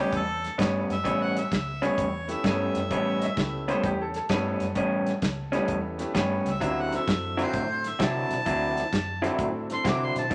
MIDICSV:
0, 0, Header, 1, 7, 480
1, 0, Start_track
1, 0, Tempo, 463320
1, 1089, Time_signature, 4, 2, 24, 8
1, 10720, End_track
2, 0, Start_track
2, 0, Title_t, "Harmonica"
2, 0, Program_c, 0, 22
2, 2, Note_on_c, 0, 67, 77
2, 140, Note_off_c, 0, 67, 0
2, 167, Note_on_c, 0, 69, 93
2, 614, Note_off_c, 0, 69, 0
2, 954, Note_on_c, 0, 76, 93
2, 1270, Note_on_c, 0, 78, 79
2, 1286, Note_off_c, 0, 76, 0
2, 1433, Note_on_c, 0, 76, 76
2, 1449, Note_off_c, 0, 78, 0
2, 1928, Note_on_c, 0, 73, 86
2, 1944, Note_off_c, 0, 76, 0
2, 2411, Note_on_c, 0, 76, 77
2, 2426, Note_off_c, 0, 73, 0
2, 2547, Note_off_c, 0, 76, 0
2, 2572, Note_on_c, 0, 76, 84
2, 3951, Note_off_c, 0, 76, 0
2, 6732, Note_on_c, 0, 76, 89
2, 7059, Note_on_c, 0, 78, 88
2, 7074, Note_off_c, 0, 76, 0
2, 7190, Note_off_c, 0, 78, 0
2, 7208, Note_on_c, 0, 76, 84
2, 7654, Note_off_c, 0, 76, 0
2, 7693, Note_on_c, 0, 72, 80
2, 8172, Note_on_c, 0, 76, 85
2, 8187, Note_off_c, 0, 72, 0
2, 8325, Note_on_c, 0, 81, 103
2, 8341, Note_off_c, 0, 76, 0
2, 9703, Note_off_c, 0, 81, 0
2, 10086, Note_on_c, 0, 84, 86
2, 10221, Note_off_c, 0, 84, 0
2, 10248, Note_on_c, 0, 86, 86
2, 10407, Note_on_c, 0, 84, 85
2, 10422, Note_off_c, 0, 86, 0
2, 10541, Note_off_c, 0, 84, 0
2, 10553, Note_on_c, 0, 81, 75
2, 10694, Note_off_c, 0, 81, 0
2, 10720, End_track
3, 0, Start_track
3, 0, Title_t, "Upright piano"
3, 0, Program_c, 1, 0
3, 3309, Note_on_c, 1, 75, 73
3, 3350, Note_off_c, 1, 75, 0
3, 3355, Note_on_c, 1, 76, 87
3, 3810, Note_off_c, 1, 76, 0
3, 3831, Note_on_c, 1, 72, 88
3, 3977, Note_off_c, 1, 72, 0
3, 3991, Note_on_c, 1, 67, 89
3, 4137, Note_off_c, 1, 67, 0
3, 4161, Note_on_c, 1, 69, 80
3, 4297, Note_off_c, 1, 69, 0
3, 4313, Note_on_c, 1, 69, 89
3, 5700, Note_off_c, 1, 69, 0
3, 10720, End_track
4, 0, Start_track
4, 0, Title_t, "Grand piano"
4, 0, Program_c, 2, 0
4, 2360, Note_on_c, 2, 57, 76
4, 2360, Note_on_c, 2, 59, 67
4, 2366, Note_on_c, 2, 64, 71
4, 2367, Note_on_c, 2, 61, 67
4, 2373, Note_on_c, 2, 67, 83
4, 2974, Note_off_c, 2, 57, 0
4, 2975, Note_off_c, 2, 59, 0
4, 2978, Note_off_c, 2, 61, 0
4, 2978, Note_off_c, 2, 64, 0
4, 2981, Note_off_c, 2, 67, 0
4, 3486, Note_on_c, 2, 57, 60
4, 3490, Note_on_c, 2, 59, 50
4, 3495, Note_on_c, 2, 61, 57
4, 3497, Note_on_c, 2, 67, 70
4, 3501, Note_on_c, 2, 64, 56
4, 4225, Note_off_c, 2, 57, 0
4, 4227, Note_off_c, 2, 59, 0
4, 4229, Note_off_c, 2, 61, 0
4, 4231, Note_off_c, 2, 67, 0
4, 4232, Note_off_c, 2, 64, 0
4, 4452, Note_on_c, 2, 57, 61
4, 4456, Note_on_c, 2, 59, 61
4, 4457, Note_on_c, 2, 61, 52
4, 4466, Note_on_c, 2, 64, 59
4, 4466, Note_on_c, 2, 69, 71
4, 4740, Note_off_c, 2, 57, 0
4, 4742, Note_off_c, 2, 59, 0
4, 4743, Note_off_c, 2, 61, 0
4, 4747, Note_off_c, 2, 64, 0
4, 4747, Note_off_c, 2, 69, 0
4, 5723, Note_on_c, 2, 57, 63
4, 5727, Note_on_c, 2, 59, 60
4, 5731, Note_on_c, 2, 61, 54
4, 5737, Note_on_c, 2, 64, 62
4, 5742, Note_on_c, 2, 67, 76
4, 6175, Note_off_c, 2, 57, 0
4, 6177, Note_off_c, 2, 59, 0
4, 6179, Note_off_c, 2, 61, 0
4, 6182, Note_off_c, 2, 64, 0
4, 6184, Note_off_c, 2, 67, 0
4, 6199, Note_on_c, 2, 57, 74
4, 6207, Note_on_c, 2, 59, 71
4, 6211, Note_on_c, 2, 61, 71
4, 6213, Note_on_c, 2, 64, 70
4, 6216, Note_on_c, 2, 67, 88
4, 6349, Note_off_c, 2, 57, 0
4, 6353, Note_off_c, 2, 59, 0
4, 6355, Note_off_c, 2, 61, 0
4, 6356, Note_off_c, 2, 64, 0
4, 6357, Note_off_c, 2, 67, 0
4, 6841, Note_on_c, 2, 58, 61
4, 6851, Note_on_c, 2, 61, 55
4, 6851, Note_on_c, 2, 65, 50
4, 6852, Note_on_c, 2, 63, 55
4, 6854, Note_on_c, 2, 67, 69
4, 7133, Note_off_c, 2, 58, 0
4, 7138, Note_off_c, 2, 61, 0
4, 7138, Note_off_c, 2, 63, 0
4, 7138, Note_off_c, 2, 65, 0
4, 7139, Note_off_c, 2, 67, 0
4, 7169, Note_on_c, 2, 57, 62
4, 7174, Note_on_c, 2, 60, 62
4, 7176, Note_on_c, 2, 62, 62
4, 7181, Note_on_c, 2, 64, 57
4, 7187, Note_on_c, 2, 66, 66
4, 8192, Note_off_c, 2, 57, 0
4, 8194, Note_off_c, 2, 60, 0
4, 8195, Note_off_c, 2, 62, 0
4, 8198, Note_off_c, 2, 64, 0
4, 8201, Note_off_c, 2, 66, 0
4, 9559, Note_on_c, 2, 60, 62
4, 9561, Note_on_c, 2, 57, 66
4, 9568, Note_on_c, 2, 62, 63
4, 9569, Note_on_c, 2, 64, 58
4, 9574, Note_on_c, 2, 66, 74
4, 10010, Note_off_c, 2, 57, 0
4, 10010, Note_off_c, 2, 60, 0
4, 10014, Note_off_c, 2, 62, 0
4, 10014, Note_off_c, 2, 64, 0
4, 10017, Note_off_c, 2, 66, 0
4, 10045, Note_on_c, 2, 57, 65
4, 10049, Note_on_c, 2, 60, 64
4, 10053, Note_on_c, 2, 62, 65
4, 10061, Note_on_c, 2, 64, 60
4, 10061, Note_on_c, 2, 69, 77
4, 10189, Note_off_c, 2, 57, 0
4, 10191, Note_off_c, 2, 60, 0
4, 10193, Note_off_c, 2, 62, 0
4, 10197, Note_off_c, 2, 64, 0
4, 10197, Note_off_c, 2, 69, 0
4, 10720, End_track
5, 0, Start_track
5, 0, Title_t, "Clean electric guitar"
5, 0, Program_c, 3, 27
5, 0, Note_on_c, 3, 45, 85
5, 0, Note_on_c, 3, 55, 84
5, 0, Note_on_c, 3, 59, 83
5, 0, Note_on_c, 3, 61, 104
5, 222, Note_off_c, 3, 61, 0
5, 225, Note_off_c, 3, 59, 0
5, 227, Note_off_c, 3, 55, 0
5, 229, Note_off_c, 3, 45, 0
5, 602, Note_on_c, 3, 45, 86
5, 608, Note_on_c, 3, 59, 93
5, 609, Note_on_c, 3, 55, 86
5, 615, Note_on_c, 3, 61, 89
5, 974, Note_off_c, 3, 45, 0
5, 977, Note_off_c, 3, 55, 0
5, 977, Note_off_c, 3, 59, 0
5, 980, Note_off_c, 3, 61, 0
5, 1075, Note_on_c, 3, 45, 80
5, 1081, Note_on_c, 3, 55, 76
5, 1084, Note_on_c, 3, 59, 79
5, 1091, Note_on_c, 3, 61, 90
5, 1451, Note_off_c, 3, 45, 0
5, 1454, Note_off_c, 3, 55, 0
5, 1455, Note_off_c, 3, 59, 0
5, 1459, Note_off_c, 3, 61, 0
5, 1886, Note_on_c, 3, 61, 101
5, 1889, Note_on_c, 3, 59, 82
5, 1895, Note_on_c, 3, 45, 78
5, 1895, Note_on_c, 3, 55, 83
5, 2145, Note_off_c, 3, 61, 0
5, 2147, Note_off_c, 3, 59, 0
5, 2149, Note_off_c, 3, 45, 0
5, 2149, Note_off_c, 3, 55, 0
5, 2530, Note_on_c, 3, 45, 82
5, 2530, Note_on_c, 3, 55, 83
5, 2540, Note_on_c, 3, 59, 86
5, 2542, Note_on_c, 3, 61, 90
5, 2899, Note_off_c, 3, 45, 0
5, 2899, Note_off_c, 3, 55, 0
5, 2904, Note_off_c, 3, 59, 0
5, 2905, Note_off_c, 3, 61, 0
5, 3013, Note_on_c, 3, 45, 86
5, 3018, Note_on_c, 3, 55, 85
5, 3025, Note_on_c, 3, 59, 81
5, 3026, Note_on_c, 3, 61, 94
5, 3380, Note_off_c, 3, 45, 0
5, 3383, Note_off_c, 3, 55, 0
5, 3387, Note_off_c, 3, 59, 0
5, 3387, Note_off_c, 3, 61, 0
5, 3814, Note_on_c, 3, 61, 85
5, 3818, Note_on_c, 3, 59, 89
5, 3827, Note_on_c, 3, 55, 86
5, 3829, Note_on_c, 3, 45, 84
5, 4070, Note_off_c, 3, 61, 0
5, 4072, Note_off_c, 3, 59, 0
5, 4076, Note_off_c, 3, 55, 0
5, 4077, Note_off_c, 3, 45, 0
5, 4451, Note_on_c, 3, 45, 80
5, 4454, Note_on_c, 3, 55, 92
5, 4454, Note_on_c, 3, 59, 92
5, 4463, Note_on_c, 3, 61, 94
5, 4820, Note_off_c, 3, 45, 0
5, 4821, Note_off_c, 3, 55, 0
5, 4821, Note_off_c, 3, 59, 0
5, 4825, Note_off_c, 3, 61, 0
5, 4925, Note_on_c, 3, 45, 80
5, 4935, Note_on_c, 3, 55, 95
5, 4940, Note_on_c, 3, 59, 82
5, 4943, Note_on_c, 3, 61, 91
5, 5296, Note_off_c, 3, 45, 0
5, 5301, Note_off_c, 3, 55, 0
5, 5304, Note_off_c, 3, 59, 0
5, 5305, Note_off_c, 3, 61, 0
5, 5719, Note_on_c, 3, 61, 98
5, 5726, Note_on_c, 3, 59, 87
5, 5733, Note_on_c, 3, 55, 98
5, 5735, Note_on_c, 3, 45, 78
5, 5981, Note_off_c, 3, 61, 0
5, 5985, Note_off_c, 3, 59, 0
5, 5988, Note_off_c, 3, 55, 0
5, 5989, Note_off_c, 3, 45, 0
5, 6364, Note_on_c, 3, 45, 82
5, 6365, Note_on_c, 3, 55, 94
5, 6370, Note_on_c, 3, 59, 83
5, 6377, Note_on_c, 3, 61, 88
5, 6734, Note_off_c, 3, 45, 0
5, 6735, Note_off_c, 3, 55, 0
5, 6737, Note_off_c, 3, 59, 0
5, 6741, Note_off_c, 3, 61, 0
5, 6841, Note_on_c, 3, 50, 81
5, 6841, Note_on_c, 3, 54, 78
5, 6849, Note_on_c, 3, 60, 77
5, 6852, Note_on_c, 3, 64, 89
5, 7213, Note_off_c, 3, 50, 0
5, 7213, Note_off_c, 3, 54, 0
5, 7217, Note_off_c, 3, 60, 0
5, 7218, Note_off_c, 3, 64, 0
5, 7639, Note_on_c, 3, 64, 105
5, 7642, Note_on_c, 3, 60, 96
5, 7644, Note_on_c, 3, 54, 85
5, 7649, Note_on_c, 3, 50, 83
5, 7900, Note_off_c, 3, 64, 0
5, 7901, Note_off_c, 3, 60, 0
5, 7902, Note_off_c, 3, 54, 0
5, 7905, Note_off_c, 3, 50, 0
5, 8278, Note_on_c, 3, 50, 79
5, 8284, Note_on_c, 3, 54, 83
5, 8286, Note_on_c, 3, 60, 95
5, 8290, Note_on_c, 3, 64, 92
5, 8650, Note_off_c, 3, 50, 0
5, 8653, Note_off_c, 3, 54, 0
5, 8654, Note_off_c, 3, 60, 0
5, 8656, Note_off_c, 3, 64, 0
5, 8760, Note_on_c, 3, 50, 74
5, 8761, Note_on_c, 3, 54, 79
5, 8769, Note_on_c, 3, 64, 102
5, 8770, Note_on_c, 3, 60, 76
5, 9130, Note_off_c, 3, 50, 0
5, 9131, Note_off_c, 3, 54, 0
5, 9135, Note_off_c, 3, 64, 0
5, 9136, Note_off_c, 3, 60, 0
5, 9553, Note_on_c, 3, 64, 104
5, 9555, Note_on_c, 3, 60, 95
5, 9560, Note_on_c, 3, 54, 82
5, 9564, Note_on_c, 3, 50, 78
5, 9815, Note_off_c, 3, 64, 0
5, 9816, Note_off_c, 3, 60, 0
5, 9818, Note_off_c, 3, 54, 0
5, 9820, Note_off_c, 3, 50, 0
5, 10199, Note_on_c, 3, 50, 89
5, 10205, Note_on_c, 3, 54, 82
5, 10207, Note_on_c, 3, 60, 84
5, 10211, Note_on_c, 3, 64, 84
5, 10569, Note_off_c, 3, 50, 0
5, 10572, Note_off_c, 3, 54, 0
5, 10573, Note_off_c, 3, 60, 0
5, 10575, Note_off_c, 3, 64, 0
5, 10672, Note_on_c, 3, 50, 82
5, 10680, Note_on_c, 3, 54, 80
5, 10685, Note_on_c, 3, 60, 86
5, 10686, Note_on_c, 3, 64, 85
5, 10720, Note_off_c, 3, 50, 0
5, 10720, Note_off_c, 3, 54, 0
5, 10720, Note_off_c, 3, 60, 0
5, 10720, Note_off_c, 3, 64, 0
5, 10720, End_track
6, 0, Start_track
6, 0, Title_t, "Fingered electric bass"
6, 0, Program_c, 4, 33
6, 132, Note_on_c, 4, 40, 90
6, 497, Note_off_c, 4, 40, 0
6, 609, Note_on_c, 4, 43, 88
6, 853, Note_off_c, 4, 43, 0
6, 927, Note_on_c, 4, 42, 76
6, 1050, Note_off_c, 4, 42, 0
6, 1086, Note_on_c, 4, 33, 88
6, 1454, Note_off_c, 4, 33, 0
6, 1569, Note_on_c, 4, 37, 84
6, 1936, Note_off_c, 4, 37, 0
6, 2049, Note_on_c, 4, 40, 89
6, 2416, Note_off_c, 4, 40, 0
6, 2525, Note_on_c, 4, 43, 89
6, 2772, Note_off_c, 4, 43, 0
6, 2855, Note_on_c, 4, 42, 76
6, 2976, Note_off_c, 4, 42, 0
6, 3008, Note_on_c, 4, 33, 91
6, 3376, Note_off_c, 4, 33, 0
6, 3494, Note_on_c, 4, 37, 90
6, 3859, Note_off_c, 4, 37, 0
6, 3973, Note_on_c, 4, 40, 86
6, 4339, Note_off_c, 4, 40, 0
6, 4451, Note_on_c, 4, 43, 83
6, 4695, Note_off_c, 4, 43, 0
6, 4769, Note_on_c, 4, 42, 85
6, 4893, Note_off_c, 4, 42, 0
6, 4931, Note_on_c, 4, 33, 86
6, 5297, Note_off_c, 4, 33, 0
6, 5411, Note_on_c, 4, 37, 84
6, 5777, Note_off_c, 4, 37, 0
6, 5890, Note_on_c, 4, 40, 82
6, 6256, Note_off_c, 4, 40, 0
6, 6366, Note_on_c, 4, 43, 84
6, 6611, Note_off_c, 4, 43, 0
6, 6681, Note_on_c, 4, 37, 89
6, 6852, Note_off_c, 4, 37, 0
6, 6852, Note_on_c, 4, 38, 87
6, 7217, Note_off_c, 4, 38, 0
6, 7328, Note_on_c, 4, 42, 93
6, 7694, Note_off_c, 4, 42, 0
6, 7807, Note_on_c, 4, 45, 85
6, 8173, Note_off_c, 4, 45, 0
6, 8285, Note_on_c, 4, 48, 91
6, 8529, Note_off_c, 4, 48, 0
6, 8596, Note_on_c, 4, 47, 79
6, 8722, Note_off_c, 4, 47, 0
6, 8764, Note_on_c, 4, 38, 92
6, 9131, Note_off_c, 4, 38, 0
6, 9244, Note_on_c, 4, 42, 85
6, 9610, Note_off_c, 4, 42, 0
6, 9721, Note_on_c, 4, 45, 85
6, 10088, Note_off_c, 4, 45, 0
6, 10203, Note_on_c, 4, 48, 80
6, 10447, Note_off_c, 4, 48, 0
6, 10519, Note_on_c, 4, 47, 80
6, 10643, Note_off_c, 4, 47, 0
6, 10681, Note_on_c, 4, 38, 90
6, 10720, Note_off_c, 4, 38, 0
6, 10720, End_track
7, 0, Start_track
7, 0, Title_t, "Drums"
7, 130, Note_on_c, 9, 36, 80
7, 131, Note_on_c, 9, 42, 74
7, 234, Note_off_c, 9, 36, 0
7, 235, Note_off_c, 9, 42, 0
7, 460, Note_on_c, 9, 42, 49
7, 470, Note_on_c, 9, 38, 35
7, 564, Note_off_c, 9, 42, 0
7, 574, Note_off_c, 9, 38, 0
7, 611, Note_on_c, 9, 36, 91
7, 616, Note_on_c, 9, 42, 84
7, 626, Note_on_c, 9, 38, 111
7, 714, Note_off_c, 9, 36, 0
7, 720, Note_off_c, 9, 42, 0
7, 730, Note_off_c, 9, 38, 0
7, 935, Note_on_c, 9, 42, 57
7, 945, Note_on_c, 9, 38, 33
7, 1039, Note_off_c, 9, 42, 0
7, 1049, Note_off_c, 9, 38, 0
7, 1090, Note_on_c, 9, 36, 88
7, 1092, Note_on_c, 9, 42, 90
7, 1194, Note_off_c, 9, 36, 0
7, 1195, Note_off_c, 9, 42, 0
7, 1416, Note_on_c, 9, 42, 65
7, 1426, Note_on_c, 9, 38, 35
7, 1519, Note_off_c, 9, 42, 0
7, 1530, Note_off_c, 9, 38, 0
7, 1571, Note_on_c, 9, 36, 80
7, 1573, Note_on_c, 9, 42, 90
7, 1583, Note_on_c, 9, 38, 100
7, 1675, Note_off_c, 9, 36, 0
7, 1677, Note_off_c, 9, 42, 0
7, 1687, Note_off_c, 9, 38, 0
7, 1895, Note_on_c, 9, 42, 59
7, 1905, Note_on_c, 9, 38, 32
7, 1998, Note_off_c, 9, 42, 0
7, 2009, Note_off_c, 9, 38, 0
7, 2051, Note_on_c, 9, 36, 80
7, 2052, Note_on_c, 9, 42, 75
7, 2154, Note_off_c, 9, 36, 0
7, 2156, Note_off_c, 9, 42, 0
7, 2370, Note_on_c, 9, 42, 64
7, 2380, Note_on_c, 9, 38, 33
7, 2473, Note_off_c, 9, 42, 0
7, 2484, Note_off_c, 9, 38, 0
7, 2529, Note_on_c, 9, 36, 85
7, 2529, Note_on_c, 9, 42, 84
7, 2539, Note_on_c, 9, 38, 107
7, 2632, Note_off_c, 9, 42, 0
7, 2633, Note_off_c, 9, 36, 0
7, 2643, Note_off_c, 9, 38, 0
7, 2848, Note_on_c, 9, 42, 64
7, 2859, Note_on_c, 9, 38, 36
7, 2952, Note_off_c, 9, 42, 0
7, 2962, Note_off_c, 9, 38, 0
7, 3011, Note_on_c, 9, 36, 83
7, 3012, Note_on_c, 9, 42, 77
7, 3115, Note_off_c, 9, 36, 0
7, 3115, Note_off_c, 9, 42, 0
7, 3333, Note_on_c, 9, 42, 63
7, 3343, Note_on_c, 9, 38, 31
7, 3437, Note_off_c, 9, 42, 0
7, 3447, Note_off_c, 9, 38, 0
7, 3491, Note_on_c, 9, 42, 77
7, 3493, Note_on_c, 9, 36, 79
7, 3501, Note_on_c, 9, 38, 104
7, 3595, Note_off_c, 9, 42, 0
7, 3596, Note_off_c, 9, 36, 0
7, 3605, Note_off_c, 9, 38, 0
7, 3818, Note_on_c, 9, 42, 56
7, 3829, Note_on_c, 9, 38, 35
7, 3922, Note_off_c, 9, 42, 0
7, 3932, Note_off_c, 9, 38, 0
7, 3974, Note_on_c, 9, 36, 90
7, 3977, Note_on_c, 9, 42, 68
7, 4078, Note_off_c, 9, 36, 0
7, 4080, Note_off_c, 9, 42, 0
7, 4290, Note_on_c, 9, 42, 59
7, 4300, Note_on_c, 9, 38, 35
7, 4394, Note_off_c, 9, 42, 0
7, 4404, Note_off_c, 9, 38, 0
7, 4446, Note_on_c, 9, 42, 79
7, 4451, Note_on_c, 9, 36, 95
7, 4457, Note_on_c, 9, 38, 116
7, 4550, Note_off_c, 9, 42, 0
7, 4554, Note_off_c, 9, 36, 0
7, 4560, Note_off_c, 9, 38, 0
7, 4767, Note_on_c, 9, 42, 57
7, 4778, Note_on_c, 9, 38, 34
7, 4871, Note_off_c, 9, 42, 0
7, 4881, Note_off_c, 9, 38, 0
7, 4925, Note_on_c, 9, 42, 79
7, 4930, Note_on_c, 9, 36, 84
7, 5028, Note_off_c, 9, 42, 0
7, 5034, Note_off_c, 9, 36, 0
7, 5247, Note_on_c, 9, 42, 54
7, 5257, Note_on_c, 9, 38, 35
7, 5350, Note_off_c, 9, 42, 0
7, 5361, Note_off_c, 9, 38, 0
7, 5408, Note_on_c, 9, 42, 88
7, 5411, Note_on_c, 9, 36, 84
7, 5418, Note_on_c, 9, 38, 102
7, 5511, Note_off_c, 9, 42, 0
7, 5515, Note_off_c, 9, 36, 0
7, 5522, Note_off_c, 9, 38, 0
7, 5730, Note_on_c, 9, 42, 60
7, 5741, Note_on_c, 9, 38, 32
7, 5834, Note_off_c, 9, 42, 0
7, 5844, Note_off_c, 9, 38, 0
7, 5883, Note_on_c, 9, 42, 81
7, 5889, Note_on_c, 9, 36, 77
7, 5987, Note_off_c, 9, 42, 0
7, 5992, Note_off_c, 9, 36, 0
7, 6206, Note_on_c, 9, 42, 65
7, 6216, Note_on_c, 9, 38, 31
7, 6309, Note_off_c, 9, 42, 0
7, 6320, Note_off_c, 9, 38, 0
7, 6368, Note_on_c, 9, 42, 84
7, 6370, Note_on_c, 9, 36, 79
7, 6378, Note_on_c, 9, 38, 116
7, 6471, Note_off_c, 9, 42, 0
7, 6473, Note_off_c, 9, 36, 0
7, 6482, Note_off_c, 9, 38, 0
7, 6691, Note_on_c, 9, 42, 62
7, 6701, Note_on_c, 9, 38, 32
7, 6795, Note_off_c, 9, 42, 0
7, 6805, Note_off_c, 9, 38, 0
7, 6850, Note_on_c, 9, 36, 83
7, 6853, Note_on_c, 9, 42, 89
7, 6954, Note_off_c, 9, 36, 0
7, 6957, Note_off_c, 9, 42, 0
7, 7174, Note_on_c, 9, 42, 59
7, 7184, Note_on_c, 9, 38, 37
7, 7278, Note_off_c, 9, 42, 0
7, 7288, Note_off_c, 9, 38, 0
7, 7330, Note_on_c, 9, 36, 86
7, 7331, Note_on_c, 9, 42, 85
7, 7341, Note_on_c, 9, 38, 111
7, 7434, Note_off_c, 9, 36, 0
7, 7435, Note_off_c, 9, 42, 0
7, 7445, Note_off_c, 9, 38, 0
7, 7652, Note_on_c, 9, 42, 57
7, 7663, Note_on_c, 9, 38, 36
7, 7756, Note_off_c, 9, 42, 0
7, 7766, Note_off_c, 9, 38, 0
7, 7805, Note_on_c, 9, 42, 71
7, 7808, Note_on_c, 9, 36, 78
7, 7909, Note_off_c, 9, 42, 0
7, 7912, Note_off_c, 9, 36, 0
7, 8125, Note_on_c, 9, 42, 61
7, 8136, Note_on_c, 9, 38, 32
7, 8229, Note_off_c, 9, 42, 0
7, 8239, Note_off_c, 9, 38, 0
7, 8284, Note_on_c, 9, 42, 84
7, 8287, Note_on_c, 9, 36, 86
7, 8295, Note_on_c, 9, 38, 109
7, 8388, Note_off_c, 9, 42, 0
7, 8390, Note_off_c, 9, 36, 0
7, 8398, Note_off_c, 9, 38, 0
7, 8606, Note_on_c, 9, 42, 61
7, 8617, Note_on_c, 9, 38, 35
7, 8710, Note_off_c, 9, 42, 0
7, 8720, Note_off_c, 9, 38, 0
7, 8766, Note_on_c, 9, 42, 80
7, 8767, Note_on_c, 9, 36, 78
7, 8870, Note_off_c, 9, 36, 0
7, 8870, Note_off_c, 9, 42, 0
7, 9087, Note_on_c, 9, 42, 56
7, 9097, Note_on_c, 9, 38, 34
7, 9191, Note_off_c, 9, 42, 0
7, 9201, Note_off_c, 9, 38, 0
7, 9248, Note_on_c, 9, 36, 80
7, 9248, Note_on_c, 9, 42, 85
7, 9259, Note_on_c, 9, 38, 100
7, 9351, Note_off_c, 9, 36, 0
7, 9352, Note_off_c, 9, 42, 0
7, 9362, Note_off_c, 9, 38, 0
7, 9570, Note_on_c, 9, 42, 62
7, 9580, Note_on_c, 9, 38, 36
7, 9673, Note_off_c, 9, 42, 0
7, 9684, Note_off_c, 9, 38, 0
7, 9724, Note_on_c, 9, 42, 74
7, 9726, Note_on_c, 9, 36, 84
7, 9827, Note_off_c, 9, 42, 0
7, 9829, Note_off_c, 9, 36, 0
7, 10048, Note_on_c, 9, 42, 60
7, 10058, Note_on_c, 9, 38, 31
7, 10151, Note_off_c, 9, 42, 0
7, 10162, Note_off_c, 9, 38, 0
7, 10204, Note_on_c, 9, 36, 89
7, 10207, Note_on_c, 9, 42, 86
7, 10217, Note_on_c, 9, 38, 104
7, 10308, Note_off_c, 9, 36, 0
7, 10311, Note_off_c, 9, 42, 0
7, 10321, Note_off_c, 9, 38, 0
7, 10524, Note_on_c, 9, 42, 61
7, 10535, Note_on_c, 9, 38, 35
7, 10628, Note_off_c, 9, 42, 0
7, 10638, Note_off_c, 9, 38, 0
7, 10679, Note_on_c, 9, 36, 83
7, 10680, Note_on_c, 9, 42, 84
7, 10720, Note_off_c, 9, 36, 0
7, 10720, Note_off_c, 9, 42, 0
7, 10720, End_track
0, 0, End_of_file